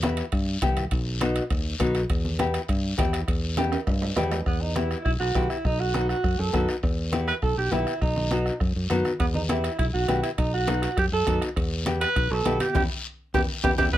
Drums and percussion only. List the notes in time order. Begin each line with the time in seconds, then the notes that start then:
0.02 bombo rim, high conga, high timbale, short guiro
0.17 bombo rim, high timbale, short guiro
0.32 bombo low, bombo rim, high timbale, long guiro
0.62 bombo low, bombo rim, high conga, high timbale, low timbale, short guiro
0.77 bombo rim, high conga, high timbale, short guiro
0.91 bombo low, bombo rim, high conga, high timbale, long guiro
1.21 bombo rim, high conga, high timbale, short guiro
1.36 bombo rim, high timbale, short guiro
1.50 bombo low, bombo rim, high conga, high timbale, long guiro
1.80 bombo low, bombo rim, high conga, high timbale, short guiro
1.95 bombo rim, high timbale, short guiro
2.10 bombo low, bombo rim, high conga, high timbale, long guiro
2.25 high conga
2.39 bombo rim, high conga, high timbale, short guiro
2.54 bombo rim, high timbale, short guiro
2.68 bombo low, bombo rim, high conga, high timbale, long guiro
2.98 bombo low, bombo rim, high conga, high timbale, low timbale, short guiro
3.13 bombo rim, high timbale, short guiro
3.28 bombo low, bombo rim, high conga, high timbale, long guiro
3.57 bombo rim, high conga, high timbale, short guiro
3.72 bombo rim, high timbale, short guiro
3.87 bombo low, bombo rim, high conga, low timbale, long guiro
4.02 low timbale
4.16 bombo rim, high conga, low timbale, short guiro
4.31 bombo rim, low timbale, short guiro
4.46 bombo low, bombo rim, high conga, long guiro
4.76 bombo rim, high conga, short guiro
4.91 bombo rim, short guiro
5.05 bombo low, bombo rim, high conga, long guiro
5.35 bombo low, bombo rim, high conga, short guiro
5.50 bombo rim, short guiro
5.65 bombo low, bombo rim, high conga, long guiro
5.94 bombo rim, high conga, short guiro
6.09 bombo rim, short guiro
6.24 bombo low, bombo rim, high conga, long guiro
6.54 bombo low, bombo rim, high conga, short guiro
6.69 bombo rim, short guiro
6.83 bombo low, bombo rim, high conga, long guiro
7.13 bombo rim, high conga, short guiro
7.28 bombo rim, short guiro
7.42 bombo low, bombo rim, high conga, long guiro
7.72 bombo rim, high conga, short guiro
7.87 bombo rim, short guiro
8.02 bombo low, bombo rim, high conga, long guiro
8.16 high conga
8.31 bombo rim, high conga, short guiro
8.46 bombo rim, short guiro
8.60 bombo low, bombo rim, high conga, long guiro
8.90 bombo rim, high conga, short guiro
9.05 bombo rim, high conga, short guiro
9.20 bombo low, bombo rim, high timbale, long guiro
9.34 high conga
9.49 bombo rim, high conga, high timbale, short guiro
9.64 bombo rim, high timbale, short guiro
9.79 bombo low, bombo rim, high conga, high timbale, long guiro
10.08 bombo rim, high conga, high timbale, low timbale, short guiro
10.23 bombo rim, high timbale, short guiro
10.38 bombo low, bombo rim, high timbale, long guiro
10.68 bombo rim, high conga, high timbale, short guiro
10.82 bombo rim, high timbale, short guiro
10.97 bombo low, bombo rim, high conga, high timbale, long guiro
11.27 bombo low, bombo rim, high conga, high timbale, short guiro
11.42 bombo rim, high timbale, short guiro
11.56 bombo low, bombo rim, high timbale, long guiro
11.86 bombo rim, high conga, high timbale, short guiro
12.01 bombo rim, high timbale, short guiro
12.16 bombo low, bombo rim, high conga, high timbale, long guiro
12.45 bombo rim, high conga, high timbale, low timbale, short guiro
12.60 bombo rim, high conga, high timbale, short guiro
12.75 bombo low, high conga, high timbale, long guiro
13.34 bombo low, high conga, high timbale, long guiro
13.64 bombo low, high conga, high timbale, long guiro
13.78 bombo low, high conga, high timbale, long guiro
13.93 bombo low, bombo rim, high conga, long guiro